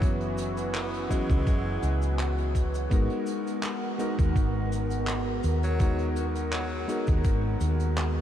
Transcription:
0.00 1.05 F#1 medium
0.00 1.06 E3 medium
0.00 1.06 F#3 medium
0.00 1.06 B3 medium
0.00 1.07 C#4 medium
0.00 1.07 F#4 medium
0.00 2.87 B4 medium
0.00 8.21 F#5 medium
0.00 2.88 E6 medium
0.00 kick loud
0.00 closed hi-hat medium
0.00 cabasa soft
0.21 closed hi-hat medium
0.38 closed hi-hat medium
0.38 cabasa medium
0.57 closed hi-hat medium
0.57 cabasa medium
0.74 1.07 B3 medium
0.74 clap loud
0.74 closed hi-hat medium
0.74 cabasa soft
0.94 closed hi-hat medium
1.09 2.86 E3 medium
1.09 2.87 F#3 medium
1.09 2.12 G#3 medium
1.09 2.87 B3 medium
1.09 2.87 C#4 medium
1.09 2.88 F#4 medium
1.09 kick medium
1.09 closed hi-hat medium
1.09 cabasa medium
1.30 1.43 C#2 medium
1.30 kick loud
1.30 closed hi-hat medium
1.30 cabasa medium
1.46 1.76 F#1 medium
1.46 kick loud
1.46 closed hi-hat medium
1.46 cabasa soft
1.82 2.86 C#2 medium
1.82 closed hi-hat medium
1.82 cabasa medium
2.02 closed hi-hat medium
2.02 cabasa medium
2.19 clap loud
2.19 closed hi-hat medium
2.19 cabasa soft
2.38 closed hi-hat medium
2.55 kick medium
2.55 closed hi-hat medium
2.55 cabasa medium
2.74 closed hi-hat medium
2.74 cabasa medium
2.90 3.07 G#1 medium
2.90 3.95 G#3 medium
2.90 3.95 B3 medium
2.90 3.95 D#4 medium
2.90 3.96 F#4 medium
2.90 8.21 A#4 medium
2.90 3.96 A#4 medium
2.90 kick loud
2.90 closed hi-hat medium
2.90 cabasa soft
3.10 closed hi-hat soft
3.26 closed hi-hat medium
3.26 cabasa medium
3.47 closed hi-hat medium
3.47 cabasa soft
3.63 clap loud
3.63 closed hi-hat medium
3.63 cabasa soft
3.98 5.75 G#3 medium
3.98 5.76 B3 medium
3.98 5.76 D#4 medium
3.98 5.76 F#4 medium
3.98 5.77 A#4 medium
3.98 closed hi-hat medium
3.98 cabasa medium
4.19 4.33 D#2 medium
4.19 kick loud
4.19 closed hi-hat medium
4.19 cabasa medium
4.35 5.39 G#1 medium
4.35 kick loud
4.35 closed hi-hat medium
4.35 cabasa soft
4.72 closed hi-hat medium
4.72 cabasa medium
4.90 closed hi-hat medium
4.90 cabasa medium
5.07 clap loud
5.07 closed hi-hat medium
5.07 cabasa soft
5.43 6.84 D#2 medium
5.43 closed hi-hat medium
5.43 cabasa medium
5.63 6.06 F#3 loud
5.63 closed hi-hat medium
5.63 cabasa soft
5.79 6.84 G#3 medium
5.79 6.84 B3 medium
5.79 6.85 D#4 medium
5.79 6.85 F#4 medium
5.79 6.85 A#4 medium
5.79 kick loud
5.79 closed hi-hat medium
5.79 cabasa soft
5.99 closed hi-hat medium
6.16 closed hi-hat medium
6.16 cabasa medium
6.35 closed hi-hat medium
6.35 cabasa medium
6.52 7.08 F#3 medium
6.52 clap loud
6.52 closed hi-hat medium
6.52 cabasa soft
6.87 8.21 G#3 medium
6.87 8.21 B3 medium
6.87 8.21 D#4 medium
6.87 8.21 F#4 medium
6.87 8.21 A#4 medium
6.87 closed hi-hat medium
6.87 cabasa medium
7.07 7.22 D#2 medium
7.07 kick loud
7.07 closed hi-hat medium
7.07 cabasa medium
7.24 7.55 G#1 medium
7.24 kick loud
7.24 closed hi-hat medium
7.24 cabasa soft
7.60 8.21 D#2 medium
7.60 closed hi-hat medium
7.60 cabasa medium
7.80 closed hi-hat medium
7.80 cabasa soft
7.97 clap loud
7.97 closed hi-hat medium
7.97 cabasa soft

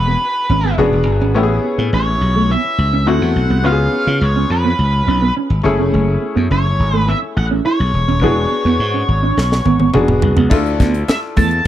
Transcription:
0.00 0.15 E1 medium
0.00 0.74 B3 medium
0.00 0.75 D4 soft
0.00 0.75 F#4 soft
0.00 0.75 G#4 medium
0.00 0.74 B4 medium
0.07 0.18 B3 medium
0.22 muted clean electric guitar stroke soft
0.49 0.72 G#1 medium
0.49 0.61 C#4 medium
0.64 0.75 B3 medium
0.78 0.89 E1 medium
0.78 1.33 B3 medium
0.78 0.90 C#4 medium
0.78 1.35 D4 medium
0.78 1.36 F#4 medium
0.78 1.36 G#4 medium
0.93 1.04 E1 medium
1.07 1.21 G1 medium
1.07 muted clean electric guitar stroke soft
1.21 1.35 G#1 medium
1.21 1.32 C#4 medium
1.34 1.58 A1 medium
1.34 1.47 A3 medium
1.34 3.03 B3 medium
1.34 3.04 C#4 medium
1.34 3.04 E4 medium
1.34 1.43 G4 medium
1.43 3.08 G#4 medium
1.64 muted clean electric guitar stroke soft
1.78 1.90 A2 medium
1.78 1.90 B3 medium
1.93 2.15 A1 medium
1.93 2.04 C#4 medium
1.93 2.52 C#5 medium
2.08 muted clean electric guitar stroke soft
2.21 2.55 B1 medium
2.36 2.47 A3 medium
2.50 2.61 B3 medium
2.50 3.08 E5 medium
2.64 muted clean electric guitar stroke soft
2.78 3.07 C#2 medium
2.93 3.04 C#4 medium
3.06 3.18 D2 medium
3.06 3.64 A3 medium
3.06 3.64 C4 soft
3.06 3.18 D4 medium
3.06 3.65 E4 soft
3.06 3.65 F#4 medium
3.06 3.66 F#5 medium
3.22 3.33 E2 medium
3.22 muted clean electric guitar stroke soft
3.36 3.47 B1 medium
3.50 3.64 C2 medium
3.50 3.61 B3 medium
3.64 3.87 C#2 medium
3.64 5.60 B3 medium
3.64 5.61 C#4 medium
3.64 3.76 C#4 medium
3.64 5.61 F4 medium
3.64 3.72 F#4 soft
3.64 4.24 F5 medium
3.72 5.64 G#4 medium
3.93 muted clean electric guitar stroke soft
4.07 4.18 C#3 medium
4.07 4.18 F4 medium
4.21 4.44 C#2 medium
4.21 4.51 C#5 medium
4.36 4.47 C#4 medium
4.50 4.73 F2 medium
4.50 5.33 B4 medium
4.50 muted clean electric guitar stroke soft
4.65 4.76 B3 medium
4.79 5.01 C#2 medium
4.79 muted clean electric guitar stroke soft
5.07 5.30 B1 medium
5.07 5.19 C#4 medium
5.22 5.33 B3 medium
5.37 5.48 C#4 medium
5.50 5.61 G#1 medium
5.63 5.79 F#1 medium
5.63 7.89 A3 medium
5.63 7.89 C#4 medium
5.63 7.90 E4 medium
5.63 7.90 G#4 medium
5.63 muted clean electric guitar stroke soft
5.79 5.90 F1 medium
5.79 5.90 C#4 medium
5.93 6.16 F#1 medium
5.93 6.04 A3 medium
6.22 muted clean electric guitar stroke soft
6.36 6.48 F#2 medium
6.36 6.47 B3 medium
6.51 6.73 F#1 medium
6.51 6.62 C#4 medium
6.51 6.97 C#5 medium
6.65 muted clean electric guitar stroke soft
6.79 7.13 G#1 medium
6.93 7.05 A3 medium
6.93 7.10 B4 medium
7.08 7.19 B3 medium
7.08 7.16 E5 medium
7.22 muted clean electric guitar stroke soft
7.37 7.59 A1 medium
7.37 7.45 F#5 medium
7.51 7.62 C#4 medium
7.65 7.76 E4 medium
7.65 9.90 C#5 medium
7.79 7.91 B1 medium
7.79 muted clean electric guitar stroke soft
7.94 8.05 E1 medium
8.08 8.19 D#1 medium
8.08 8.19 C#4 medium
8.21 8.45 E1 medium
8.21 9.90 B3 medium
8.21 9.91 D4 soft
8.21 8.34 E4 medium
8.21 9.91 F#4 soft
8.21 9.91 G#4 medium
8.51 muted clean electric guitar stroke soft
8.65 8.76 E2 medium
8.65 8.76 B3 medium
8.79 9.02 G#2 medium
8.94 9.05 C#4 medium
9.08 9.31 G#1 medium
9.08 muted clean electric guitar stroke soft
9.23 9.34 D4 medium
9.37 9.60 B1 medium
9.37 muted clean electric guitar stroke soft
9.37 snare soft
9.52 snare soft
9.65 9.88 G#1 medium
9.65 9.77 B3 medium
9.65 high tom medium
9.80 9.91 B3 medium
9.80 high tom medium
9.94 10.05 E1 medium
9.94 10.51 B3 medium
9.94 10.05 C#4 medium
9.94 10.48 D4 medium
9.94 10.51 F#4 medium
9.94 10.52 G#4 medium
9.94 mid tom medium
10.08 10.20 E1 medium
10.08 mid tom medium
10.22 10.34 C2 medium
10.22 muted clean electric guitar stroke soft
10.22 floor tom medium
10.37 10.48 C#2 medium
10.37 10.48 B3 medium
10.37 floor tom medium
10.50 10.74 D2 loud
10.50 10.63 A3 medium
10.50 11.67 D4 medium
10.50 11.67 E4 medium
10.50 11.67 F4 medium
10.50 11.67 A4 medium
10.50 kick medium
10.50 crash medium
10.66 closed hi-hat soft
10.80 11.03 D2 medium
10.80 10.91 B3 medium
10.80 kick medium
10.80 snare soft
10.80 closed hi-hat medium
10.94 muted clean electric guitar stroke soft
10.94 closed hi-hat soft
11.08 11.17 E5 medium
11.08 snare loud
11.08 closed hi-hat medium
11.08 high conga medium
11.37 11.60 E2 medium
11.37 11.48 A3 medium
11.37 11.67 A5 loud
11.37 kick medium
11.37 open hi-hat medium
11.37 low conga medium
11.51 closed hi-hat soft

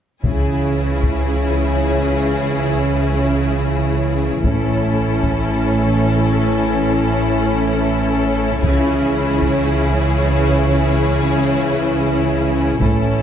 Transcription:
0.24 4.41 C#2 soft
0.24 4.40 C#3 soft
0.24 4.40 E3 soft
0.24 4.40 C#4 soft
0.24 4.40 E4 soft
0.24 4.40 G#4 soft
0.24 taiko soft
1.03 taiko soft
4.44 8.63 A1 soft
4.44 8.63 A2 soft
4.44 8.47 E3 soft
4.44 8.58 C#4 soft
4.44 8.47 C#4 soft
4.44 8.59 E4 soft
4.44 8.59 A4 soft
4.44 taiko soft
5.23 taiko soft
8.61 12.76 C#2 medium
8.61 12.77 C#3 medium
8.61 12.77 E3 medium
8.61 12.77 C#4 medium
8.61 12.78 C#4 medium
8.61 12.76 E4 medium
8.61 12.81 G#4 medium
8.61 taiko soft
9.41 taiko soft
12.80 13.22 A1 medium
12.80 13.22 A2 soft
12.80 13.22 E3 soft
12.80 13.22 C#4 soft
12.80 13.22 E4 soft
12.80 13.22 A4 soft
12.80 taiko medium

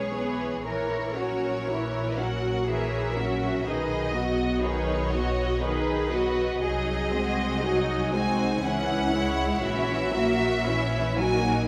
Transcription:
0.00 0.62 B1 soft
0.00 0.12 G#3 soft
0.00 0.12 C#4 soft
0.00 0.66 G#4 soft
0.00 0.11 B4 soft
0.00 0.11 C#5 soft
0.00 0.65 C#5 soft
0.15 0.65 E3 soft
0.15 0.67 B3 soft
0.15 0.67 G#4 soft
0.15 0.66 B4 soft
0.66 3.62 A#1 soft
0.66 1.13 E3 soft
0.66 1.13 E4 soft
0.66 1.13 A#4 soft
0.66 1.16 A#4 soft
0.66 2.15 C#5 medium
0.66 1.14 C#5 soft
1.17 1.67 F#3 soft
1.17 1.68 C#4 soft
1.17 1.67 F#4 soft
1.17 1.66 A#4 soft
1.67 2.18 E3 soft
1.67 2.17 E4 soft
1.67 2.18 E4 soft
1.67 2.16 A#4 soft
1.67 2.18 C#5 soft
2.17 2.68 F#3 soft
2.17 2.68 C#4 soft
2.17 2.68 F#4 soft
2.17 2.66 A#4 soft
2.17 2.68 F#5 soft
2.67 3.14 E3 soft
2.67 3.14 E4 soft
2.67 3.17 G#4 soft
2.67 3.14 A#4 soft
2.67 3.14 C#5 soft
2.67 3.66 E5 medium
3.17 3.66 F#3 soft
3.17 3.66 C#4 soft
3.17 3.66 F#4 soft
3.17 3.66 A#4 soft
3.64 6.63 B1 soft
3.64 4.11 D#3 soft
3.64 4.10 D#4 soft
3.64 4.11 D#4 soft
3.64 4.14 G#4 soft
3.64 4.11 B4 soft
3.64 4.63 D#5 medium
4.12 4.63 F#3 soft
4.12 4.63 B3 soft
4.12 4.63 F#4 soft
4.12 4.63 D#5 soft
4.63 5.14 D#3 soft
4.63 5.13 D#4 soft
4.63 5.14 D#4 soft
4.63 5.14 G#4 soft
4.63 5.14 B4 soft
4.63 5.61 C#5 medium
5.12 5.64 F#3 soft
5.12 5.64 B3 soft
5.12 5.63 F#4 soft
5.12 5.63 F#4 medium
5.12 5.63 D#5 soft
5.62 6.10 D#3 soft
5.62 6.09 D#4 soft
5.62 6.10 D#4 soft
5.62 6.12 G#4 medium
5.62 6.09 B4 soft
5.62 6.63 B4 medium
6.12 6.61 F#3 soft
6.12 6.63 B3 soft
6.12 6.63 F#4 soft
6.12 6.63 F#4 medium
6.12 6.63 D#5 soft
6.62 8.59 C2 soft
6.62 7.09 F#3 soft
6.62 7.09 D#4 soft
6.62 7.09 G#4 soft
6.62 7.63 G#4 soft
6.62 8.10 D#5 medium
7.11 7.63 G#3 soft
7.11 7.63 C4 soft
7.11 7.62 F#4 soft
7.11 7.63 C5 soft
7.62 8.13 F#3 soft
7.62 8.13 D#4 soft
7.62 8.13 F#4 medium
7.62 8.14 G#4 soft
8.12 8.64 G#3 soft
8.12 8.64 C4 soft
8.12 8.63 D#4 medium
8.12 8.63 F#4 soft
8.12 8.64 C5 soft
8.12 8.64 G#5 medium
8.63 9.64 C#2 soft
8.63 9.10 E3 soft
8.63 9.10 C#4 soft
8.63 9.61 E4 medium
8.63 9.10 G#4 soft
8.63 9.64 F#5 medium
9.12 9.63 G#3 soft
9.12 9.64 E4 soft
9.12 9.62 E4 medium
9.12 9.62 C#5 soft
9.63 11.66 A#1 medium
9.63 10.11 E3 medium
9.63 10.11 C#4 soft
9.63 10.11 E4 medium
9.63 10.64 F#4 medium
9.63 10.11 C#5 medium
9.63 11.19 E5 medium
10.14 10.66 F#3 soft
10.14 10.66 A#3 soft
10.14 10.66 F#4 soft
10.14 10.66 A#4 soft
10.66 11.18 E3 medium
10.66 11.19 C#4 soft
10.66 11.18 E4 medium
10.66 11.18 E4 soft
10.66 11.18 C#5 soft
11.18 11.68 F#3 soft
11.18 11.68 A#3 soft
11.18 11.68 D#4 medium
11.18 11.68 F#4 soft
11.18 11.68 A#4 soft
11.18 11.68 G#5 medium

